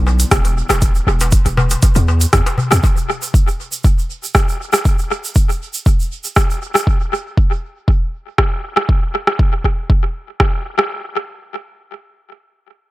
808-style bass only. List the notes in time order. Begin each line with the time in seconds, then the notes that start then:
Already playing: B1
0.31 E1
0.70 E1
1.07 E1
1.46 E1
1.96 E2
2.33 E2
2.72 E2